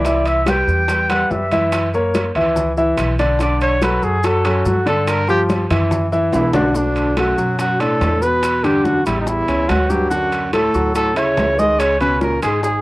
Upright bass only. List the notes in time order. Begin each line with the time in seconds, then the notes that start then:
Already playing: C2
0.68 E2
1.30 F#2
2.35 C#2
2.99 B1
4.03 F#2
4.66 G2
5.70 F#2
6.33 B1
7.38 B2
8.01 E2
9.06 A1
9.48 C#2
9.69 D2
10.74 D2
11.38 C#2
12.43 G#1